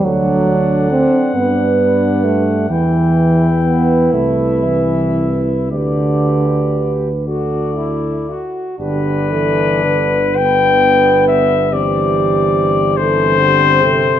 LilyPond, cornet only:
\new Staff \with { instrumentName = "Cornet" } { \time 6/8 \key g \major \tempo 4. = 43 fis''2. | g''4. e''4. | d''4 r8 d''4 r8 | b'4. g''4 e''8 |
d''4. c''4. | }